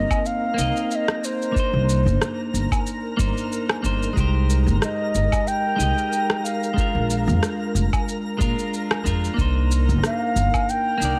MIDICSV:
0, 0, Header, 1, 6, 480
1, 0, Start_track
1, 0, Key_signature, -3, "minor"
1, 0, Tempo, 652174
1, 1146, Time_signature, 4, 2, 24, 8
1, 8239, End_track
2, 0, Start_track
2, 0, Title_t, "Flute"
2, 0, Program_c, 0, 73
2, 0, Note_on_c, 0, 75, 97
2, 192, Note_on_c, 0, 77, 108
2, 203, Note_off_c, 0, 75, 0
2, 675, Note_off_c, 0, 77, 0
2, 675, Note_on_c, 0, 77, 83
2, 701, Note_on_c, 0, 75, 91
2, 709, Note_off_c, 0, 77, 0
2, 919, Note_on_c, 0, 72, 87
2, 930, Note_off_c, 0, 75, 0
2, 1872, Note_off_c, 0, 72, 0
2, 3554, Note_on_c, 0, 75, 98
2, 4028, Note_on_c, 0, 79, 115
2, 4039, Note_off_c, 0, 75, 0
2, 4741, Note_on_c, 0, 77, 89
2, 4752, Note_off_c, 0, 79, 0
2, 5703, Note_off_c, 0, 77, 0
2, 7403, Note_on_c, 0, 77, 102
2, 7873, Note_on_c, 0, 79, 109
2, 7884, Note_off_c, 0, 77, 0
2, 8239, Note_off_c, 0, 79, 0
2, 8239, End_track
3, 0, Start_track
3, 0, Title_t, "Synth texture"
3, 0, Program_c, 1, 99
3, 0, Note_on_c, 1, 70, 79
3, 0, Note_on_c, 1, 82, 81
3, 8239, Note_off_c, 1, 70, 0
3, 8239, Note_off_c, 1, 82, 0
3, 8239, End_track
4, 0, Start_track
4, 0, Title_t, "Clean electric guitar"
4, 0, Program_c, 2, 27
4, 0, Note_on_c, 2, 58, 93
4, 0, Note_on_c, 2, 60, 84
4, 0, Note_on_c, 2, 63, 78
4, 0, Note_on_c, 2, 72, 102
4, 386, Note_off_c, 2, 58, 0
4, 395, Note_off_c, 2, 60, 0
4, 398, Note_on_c, 2, 58, 67
4, 403, Note_off_c, 2, 63, 0
4, 411, Note_off_c, 2, 72, 0
4, 415, Note_on_c, 2, 60, 60
4, 430, Note_on_c, 2, 63, 60
4, 451, Note_on_c, 2, 75, 71
4, 1106, Note_off_c, 2, 58, 0
4, 1114, Note_off_c, 2, 60, 0
4, 1118, Note_off_c, 2, 63, 0
4, 1121, Note_on_c, 2, 58, 76
4, 1132, Note_off_c, 2, 75, 0
4, 1135, Note_on_c, 2, 62, 71
4, 1155, Note_on_c, 2, 63, 69
4, 1175, Note_on_c, 2, 72, 87
4, 2307, Note_off_c, 2, 58, 0
4, 2315, Note_off_c, 2, 62, 0
4, 2324, Note_off_c, 2, 63, 0
4, 2333, Note_on_c, 2, 58, 73
4, 2334, Note_off_c, 2, 72, 0
4, 2341, Note_on_c, 2, 62, 65
4, 2349, Note_on_c, 2, 63, 73
4, 2359, Note_on_c, 2, 72, 85
4, 2793, Note_off_c, 2, 58, 0
4, 2797, Note_off_c, 2, 62, 0
4, 2802, Note_off_c, 2, 63, 0
4, 2807, Note_off_c, 2, 72, 0
4, 2815, Note_on_c, 2, 58, 81
4, 2822, Note_on_c, 2, 62, 76
4, 2833, Note_on_c, 2, 63, 77
4, 2841, Note_on_c, 2, 72, 93
4, 3034, Note_off_c, 2, 58, 0
4, 3038, Note_off_c, 2, 62, 0
4, 3042, Note_on_c, 2, 56, 96
4, 3044, Note_off_c, 2, 63, 0
4, 3047, Note_off_c, 2, 72, 0
4, 3060, Note_on_c, 2, 63, 88
4, 3076, Note_on_c, 2, 67, 86
4, 3093, Note_on_c, 2, 72, 102
4, 4228, Note_off_c, 2, 56, 0
4, 4237, Note_off_c, 2, 63, 0
4, 4240, Note_on_c, 2, 56, 69
4, 4245, Note_off_c, 2, 67, 0
4, 4253, Note_off_c, 2, 72, 0
4, 4256, Note_on_c, 2, 63, 64
4, 4272, Note_on_c, 2, 67, 64
4, 4293, Note_on_c, 2, 75, 74
4, 4947, Note_off_c, 2, 56, 0
4, 4955, Note_off_c, 2, 63, 0
4, 4958, Note_on_c, 2, 56, 80
4, 4963, Note_off_c, 2, 67, 0
4, 4973, Note_off_c, 2, 75, 0
4, 4977, Note_on_c, 2, 62, 71
4, 4994, Note_on_c, 2, 65, 73
4, 5010, Note_on_c, 2, 70, 90
4, 6146, Note_off_c, 2, 56, 0
4, 6156, Note_off_c, 2, 62, 0
4, 6164, Note_off_c, 2, 65, 0
4, 6170, Note_on_c, 2, 56, 70
4, 6172, Note_off_c, 2, 70, 0
4, 6179, Note_on_c, 2, 62, 64
4, 6188, Note_on_c, 2, 65, 67
4, 6197, Note_on_c, 2, 70, 84
4, 6632, Note_off_c, 2, 56, 0
4, 6636, Note_off_c, 2, 62, 0
4, 6641, Note_off_c, 2, 65, 0
4, 6645, Note_off_c, 2, 70, 0
4, 6654, Note_on_c, 2, 56, 80
4, 6662, Note_on_c, 2, 62, 74
4, 6672, Note_on_c, 2, 65, 76
4, 6679, Note_on_c, 2, 70, 87
4, 6871, Note_off_c, 2, 56, 0
4, 6874, Note_on_c, 2, 58, 90
4, 6878, Note_off_c, 2, 62, 0
4, 6883, Note_off_c, 2, 65, 0
4, 6886, Note_off_c, 2, 70, 0
4, 6894, Note_on_c, 2, 62, 83
4, 6909, Note_on_c, 2, 63, 85
4, 6927, Note_on_c, 2, 72, 102
4, 8064, Note_off_c, 2, 58, 0
4, 8074, Note_off_c, 2, 62, 0
4, 8078, Note_on_c, 2, 58, 68
4, 8082, Note_off_c, 2, 63, 0
4, 8090, Note_off_c, 2, 72, 0
4, 8095, Note_on_c, 2, 62, 62
4, 8112, Note_on_c, 2, 63, 61
4, 8132, Note_on_c, 2, 74, 75
4, 8239, Note_off_c, 2, 58, 0
4, 8239, Note_off_c, 2, 62, 0
4, 8239, Note_off_c, 2, 63, 0
4, 8239, Note_off_c, 2, 74, 0
4, 8239, End_track
5, 0, Start_track
5, 0, Title_t, "Upright bass"
5, 0, Program_c, 3, 32
5, 425, Note_on_c, 3, 36, 67
5, 507, Note_off_c, 3, 36, 0
5, 1275, Note_on_c, 3, 36, 91
5, 1516, Note_on_c, 3, 31, 96
5, 1527, Note_off_c, 3, 36, 0
5, 1584, Note_off_c, 3, 31, 0
5, 1867, Note_on_c, 3, 31, 87
5, 1948, Note_off_c, 3, 31, 0
5, 2348, Note_on_c, 3, 31, 78
5, 2429, Note_off_c, 3, 31, 0
5, 2825, Note_on_c, 3, 31, 71
5, 2984, Note_off_c, 3, 31, 0
5, 3068, Note_on_c, 3, 36, 87
5, 3433, Note_on_c, 3, 31, 95
5, 3444, Note_off_c, 3, 36, 0
5, 3503, Note_off_c, 3, 31, 0
5, 3787, Note_on_c, 3, 31, 88
5, 3868, Note_off_c, 3, 31, 0
5, 4261, Note_on_c, 3, 36, 68
5, 4346, Note_off_c, 3, 36, 0
5, 5113, Note_on_c, 3, 34, 90
5, 5353, Note_on_c, 3, 41, 94
5, 5364, Note_off_c, 3, 34, 0
5, 5423, Note_off_c, 3, 41, 0
5, 5701, Note_on_c, 3, 29, 83
5, 5785, Note_off_c, 3, 29, 0
5, 6183, Note_on_c, 3, 46, 75
5, 6267, Note_off_c, 3, 46, 0
5, 6665, Note_on_c, 3, 41, 70
5, 6824, Note_off_c, 3, 41, 0
5, 6904, Note_on_c, 3, 36, 78
5, 7277, Note_on_c, 3, 31, 92
5, 7288, Note_off_c, 3, 36, 0
5, 7345, Note_off_c, 3, 31, 0
5, 7623, Note_on_c, 3, 31, 86
5, 7706, Note_off_c, 3, 31, 0
5, 8100, Note_on_c, 3, 36, 70
5, 8185, Note_off_c, 3, 36, 0
5, 8239, End_track
6, 0, Start_track
6, 0, Title_t, "Drums"
6, 76, Note_on_c, 9, 36, 98
6, 79, Note_on_c, 9, 77, 72
6, 83, Note_on_c, 9, 82, 30
6, 149, Note_off_c, 9, 36, 0
6, 152, Note_off_c, 9, 77, 0
6, 157, Note_off_c, 9, 82, 0
6, 190, Note_on_c, 9, 82, 40
6, 263, Note_off_c, 9, 82, 0
6, 431, Note_on_c, 9, 82, 71
6, 505, Note_off_c, 9, 82, 0
6, 563, Note_on_c, 9, 82, 32
6, 637, Note_off_c, 9, 82, 0
6, 671, Note_on_c, 9, 82, 40
6, 744, Note_off_c, 9, 82, 0
6, 797, Note_on_c, 9, 37, 74
6, 871, Note_off_c, 9, 37, 0
6, 913, Note_on_c, 9, 82, 71
6, 987, Note_off_c, 9, 82, 0
6, 1046, Note_on_c, 9, 82, 31
6, 1119, Note_off_c, 9, 82, 0
6, 1146, Note_on_c, 9, 36, 110
6, 1153, Note_on_c, 9, 82, 44
6, 1219, Note_off_c, 9, 36, 0
6, 1227, Note_off_c, 9, 82, 0
6, 1394, Note_on_c, 9, 82, 66
6, 1468, Note_off_c, 9, 82, 0
6, 1528, Note_on_c, 9, 82, 32
6, 1601, Note_off_c, 9, 82, 0
6, 1630, Note_on_c, 9, 37, 69
6, 1635, Note_on_c, 9, 82, 43
6, 1704, Note_off_c, 9, 37, 0
6, 1709, Note_off_c, 9, 82, 0
6, 1876, Note_on_c, 9, 82, 73
6, 1950, Note_off_c, 9, 82, 0
6, 1998, Note_on_c, 9, 36, 103
6, 2001, Note_on_c, 9, 77, 72
6, 2006, Note_on_c, 9, 82, 31
6, 2071, Note_off_c, 9, 36, 0
6, 2075, Note_off_c, 9, 77, 0
6, 2080, Note_off_c, 9, 82, 0
6, 2111, Note_on_c, 9, 82, 44
6, 2185, Note_off_c, 9, 82, 0
6, 2348, Note_on_c, 9, 36, 100
6, 2353, Note_on_c, 9, 82, 78
6, 2421, Note_off_c, 9, 36, 0
6, 2426, Note_off_c, 9, 82, 0
6, 2485, Note_on_c, 9, 82, 29
6, 2559, Note_off_c, 9, 82, 0
6, 2594, Note_on_c, 9, 82, 44
6, 2667, Note_off_c, 9, 82, 0
6, 2719, Note_on_c, 9, 37, 82
6, 2719, Note_on_c, 9, 77, 58
6, 2793, Note_off_c, 9, 37, 0
6, 2793, Note_off_c, 9, 77, 0
6, 2827, Note_on_c, 9, 36, 55
6, 2831, Note_on_c, 9, 82, 75
6, 2901, Note_off_c, 9, 36, 0
6, 2904, Note_off_c, 9, 82, 0
6, 2964, Note_on_c, 9, 82, 33
6, 3037, Note_off_c, 9, 82, 0
6, 3067, Note_on_c, 9, 36, 112
6, 3072, Note_on_c, 9, 82, 45
6, 3141, Note_off_c, 9, 36, 0
6, 3145, Note_off_c, 9, 82, 0
6, 3312, Note_on_c, 9, 82, 72
6, 3386, Note_off_c, 9, 82, 0
6, 3443, Note_on_c, 9, 82, 34
6, 3517, Note_off_c, 9, 82, 0
6, 3547, Note_on_c, 9, 37, 75
6, 3552, Note_on_c, 9, 82, 42
6, 3621, Note_off_c, 9, 37, 0
6, 3625, Note_off_c, 9, 82, 0
6, 3790, Note_on_c, 9, 82, 71
6, 3863, Note_off_c, 9, 82, 0
6, 3917, Note_on_c, 9, 77, 71
6, 3918, Note_on_c, 9, 36, 105
6, 3922, Note_on_c, 9, 82, 32
6, 3991, Note_off_c, 9, 77, 0
6, 3992, Note_off_c, 9, 36, 0
6, 3996, Note_off_c, 9, 82, 0
6, 4030, Note_on_c, 9, 82, 43
6, 4103, Note_off_c, 9, 82, 0
6, 4269, Note_on_c, 9, 82, 73
6, 4343, Note_off_c, 9, 82, 0
6, 4403, Note_on_c, 9, 82, 31
6, 4476, Note_off_c, 9, 82, 0
6, 4510, Note_on_c, 9, 82, 44
6, 4583, Note_off_c, 9, 82, 0
6, 4635, Note_on_c, 9, 37, 77
6, 4709, Note_off_c, 9, 37, 0
6, 4751, Note_on_c, 9, 82, 75
6, 4825, Note_off_c, 9, 82, 0
6, 4881, Note_on_c, 9, 82, 33
6, 4955, Note_off_c, 9, 82, 0
6, 4984, Note_on_c, 9, 36, 109
6, 4991, Note_on_c, 9, 82, 43
6, 5058, Note_off_c, 9, 36, 0
6, 5065, Note_off_c, 9, 82, 0
6, 5229, Note_on_c, 9, 82, 69
6, 5302, Note_off_c, 9, 82, 0
6, 5364, Note_on_c, 9, 82, 31
6, 5437, Note_off_c, 9, 82, 0
6, 5466, Note_on_c, 9, 37, 68
6, 5471, Note_on_c, 9, 82, 41
6, 5540, Note_off_c, 9, 37, 0
6, 5545, Note_off_c, 9, 82, 0
6, 5711, Note_on_c, 9, 82, 72
6, 5784, Note_off_c, 9, 82, 0
6, 5836, Note_on_c, 9, 36, 104
6, 5837, Note_on_c, 9, 77, 70
6, 5842, Note_on_c, 9, 82, 33
6, 5909, Note_off_c, 9, 36, 0
6, 5911, Note_off_c, 9, 77, 0
6, 5916, Note_off_c, 9, 82, 0
6, 5950, Note_on_c, 9, 82, 42
6, 6024, Note_off_c, 9, 82, 0
6, 6184, Note_on_c, 9, 36, 110
6, 6190, Note_on_c, 9, 82, 72
6, 6258, Note_off_c, 9, 36, 0
6, 6264, Note_off_c, 9, 82, 0
6, 6321, Note_on_c, 9, 82, 31
6, 6395, Note_off_c, 9, 82, 0
6, 6431, Note_on_c, 9, 82, 43
6, 6505, Note_off_c, 9, 82, 0
6, 6557, Note_on_c, 9, 37, 75
6, 6557, Note_on_c, 9, 77, 57
6, 6630, Note_off_c, 9, 37, 0
6, 6630, Note_off_c, 9, 77, 0
6, 6665, Note_on_c, 9, 36, 61
6, 6670, Note_on_c, 9, 82, 70
6, 6739, Note_off_c, 9, 36, 0
6, 6744, Note_off_c, 9, 82, 0
6, 6804, Note_on_c, 9, 82, 31
6, 6878, Note_off_c, 9, 82, 0
6, 6904, Note_on_c, 9, 36, 107
6, 6912, Note_on_c, 9, 82, 40
6, 6978, Note_off_c, 9, 36, 0
6, 6986, Note_off_c, 9, 82, 0
6, 7150, Note_on_c, 9, 82, 68
6, 7223, Note_off_c, 9, 82, 0
6, 7282, Note_on_c, 9, 82, 30
6, 7356, Note_off_c, 9, 82, 0
6, 7386, Note_on_c, 9, 37, 69
6, 7391, Note_on_c, 9, 82, 40
6, 7459, Note_off_c, 9, 37, 0
6, 7464, Note_off_c, 9, 82, 0
6, 7629, Note_on_c, 9, 82, 74
6, 7703, Note_off_c, 9, 82, 0
6, 7756, Note_on_c, 9, 77, 73
6, 7757, Note_on_c, 9, 36, 100
6, 7761, Note_on_c, 9, 82, 30
6, 7830, Note_off_c, 9, 77, 0
6, 7831, Note_off_c, 9, 36, 0
6, 7835, Note_off_c, 9, 82, 0
6, 7869, Note_on_c, 9, 82, 40
6, 7943, Note_off_c, 9, 82, 0
6, 8110, Note_on_c, 9, 82, 72
6, 8183, Note_off_c, 9, 82, 0
6, 8239, End_track
0, 0, End_of_file